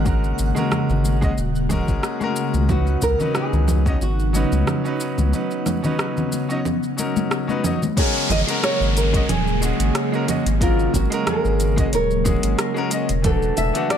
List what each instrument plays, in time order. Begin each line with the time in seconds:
Already playing: analog synth bass G#1, ambient pad C#3 G#3 A#3 F#4, synth texture F#5
0.04 grand piano G#3 C#4 F#4 A#4, kick, shaker
0.24 shaker
0.39 analog synth bass G#1, shaker
0.55 grand piano G#3 C#4 F#4 A#4, low conga, shaker
0.72 cross-stick, low conga, shaker
0.90 analog synth bass G#1, low conga, shaker
1.05 muted conga, shaker
1.21 grand piano G#3 C#4 F#4 D#5, kick, shaker
1.38 analog synth bass D#1, shaker
1.56 shaker
1.69 grand piano G#3 C#4 F#4 A#4, kick, muted conga, low conga, shaker
1.88 analog synth bass G#1, kick, muted conga, high conga, shaker
2.03 cross-stick, shaker
2.20 grand piano G#3 C#4 F#4 A#4, high conga, shaker
2.36 shaker
2.54 analog synth bass C#2, high conga, low conga, shaker
2.68 grand piano F#3 C#4 D#4 B4, ambient pad F#3 B3 D#4, nylon-string guitar F#4, kick, low conga, shaker
2.87 shaker
3.02 analog synth bass C#2, nylon-string guitar A#4, kick, shaker
3.18 grand piano F#3 C#4 D#4 B4, low conga, shaker
3.35 nylon-string guitar G#4, cross-stick, shaker
3.53 analog synth bass C#2, low conga, shaker
3.68 muted conga, low conga, shaker
3.85 grand piano F#3 C#4 D#4 D#5, kick, shaker
4.02 analog synth bass G#1, nylon-string guitar F#4, shaker
4.19 shaker
4.33 grand piano F#3 C#4 D#4 B4, muted conga, shaker
4.52 analog synth bass C#2, high conga, shaker
4.67 cross-stick, low conga, shaker
4.84 grand piano F#3 C#4 D#4 B4, shaker
5.00 shaker
5.18 analog synth bass C#2, high conga, low conga, shaker
5.32 grand piano F#3 C#4 D#4 B4, ambient pad C#4, shaker
5.51 shaker
5.66 cross-stick, high conga, low conga, shaker
5.82 grand piano F#3 C#4 D#4 B4, low conga, shaker
5.99 cross-stick, shaker
6.17 low conga, shaker
6.32 muted conga, shaker
6.48 grand piano F#3 C#4 D#4 D#5, shaker
6.65 low conga, shaker
6.83 shaker
6.97 grand piano F#3 C#4 D#4 A#4, muted conga, shaker
7.16 muted conga, high conga, shaker
7.31 cross-stick, shaker
7.47 grand piano F#3 C#4 D#4 B4, high conga, shaker
7.63 grand piano F#3 C#4 D#4 D#5, low conga, shaker
7.82 high conga, low conga, shaker
7.96 ambient pad C#3 F#3 G#3 A#3, grand piano G#3 C#4 F#4 A#4, nylon-string guitar G#4, harp C#5, kick, closed hi-hat, downlifter, shaker
8.16 shaker
8.30 analog synth bass G#1, nylon-string guitar D#5, closed hi-hat, low conga, shaker
8.47 grand piano G#3 C#4 F#4 A#4, closed hi-hat, shaker
8.63 harp A#4, nylon-string guitar C#5, cross-stick, closed hi-hat, shaker
8.81 analog synth bass G#1, shaker
8.97 nylon-string guitar A#4, closed hi-hat, shaker
9.13 grand piano G#3 C#4 F#4 D#5, kick, closed hi-hat, shaker
9.29 analog synth bass D#1, harp G#4, nylon-string guitar G#4, closed hi-hat, low conga, shaker
9.47 shaker
9.61 grand piano G#3 C#4 F#4 G#4, shaker
9.80 analog synth bass G#1, closed hi-hat, shaker
9.95 harp C#5, cross-stick, closed hi-hat, shaker
10.12 grand piano G#3 C#4 F#4 A#4, shaker
10.27 grand piano G#3 C#4 F#4 D#5, closed hi-hat, low conga, shaker
10.46 analog synth bass G#1, closed hi-hat, shaker
10.60 grand piano F#3 G#3 C#4 A#4, nylon-string guitar F4, harp A#4, kick, closed hi-hat, shaker
10.79 shaker
10.94 analog synth bass G#1, nylon-string guitar F#4, kick, closed hi-hat, shaker
11.10 grand piano G#3 C#4 F#4 A#4, closed hi-hat, shaker
11.27 harp G#4, nylon-string guitar A#4, cross-stick, closed hi-hat, low conga, shaker
11.45 analog synth bass G#1, shaker
11.60 closed hi-hat, shaker
11.76 grand piano G#3 C#4 F#4 D#5, kick, closed hi-hat, shaker
11.93 analog synth bass D#1, nylon-string guitar A#4, harp C#5, closed hi-hat, shaker
12.11 shaker
12.24 grand piano G#3 C#4 F#4 G#4, kick, low conga, shaker
12.43 analog synth bass G#1, closed hi-hat, shaker
12.59 harp A#4, cross-stick, closed hi-hat, shaker
12.74 grand piano G#3 C#4 F#4 A#4, shaker
12.90 grand piano G#3 C#4 F#4 D#5, closed hi-hat, shaker
13.09 analog synth bass E1, closed hi-hat, shaker
13.22 ambient pad D3 F#3 A3 E4, grand piano E3 A3 D4 F#4, harp A4, nylon-string guitar A4, kick, closed hi-hat, low conga, shaker
13.42 shaker
13.57 analog synth bass E1, nylon-string guitar E5, closed hi-hat, shaker
13.73 grand piano E3 A3 D4 F#4, closed hi-hat, shaker
13.90 nylon-string guitar D5, harp D5, cross-stick, closed hi-hat, shaker